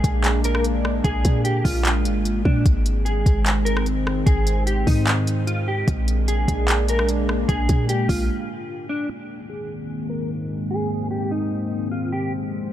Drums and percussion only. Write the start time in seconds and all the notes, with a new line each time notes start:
0.04 kick, closed hi-hat
0.24 clap, closed hi-hat
0.44 closed hi-hat
0.55 cross-stick
0.64 closed hi-hat
0.85 cross-stick
1.05 kick, closed hi-hat
1.25 kick, closed hi-hat
1.45 closed hi-hat
1.65 kick, open hi-hat
1.85 clap, closed hi-hat
2.05 closed hi-hat
2.25 closed hi-hat
2.45 kick
2.66 kick, closed hi-hat
2.86 closed hi-hat
3.06 closed hi-hat
3.26 kick, closed hi-hat
3.46 clap, closed hi-hat
3.66 closed hi-hat
3.77 cross-stick
3.86 closed hi-hat
4.07 cross-stick
4.27 kick, closed hi-hat
4.47 closed hi-hat
4.67 closed hi-hat
4.87 kick, open hi-hat
5.07 clap, closed hi-hat
5.27 closed hi-hat
5.47 closed hi-hat
5.88 kick, closed hi-hat
6.08 closed hi-hat
6.28 closed hi-hat
6.48 kick, closed hi-hat
6.68 clap, closed hi-hat
6.88 closed hi-hat
6.99 cross-stick
7.09 closed hi-hat
7.29 cross-stick
7.49 kick, closed hi-hat
7.69 kick, closed hi-hat
7.89 closed hi-hat
8.09 kick, open hi-hat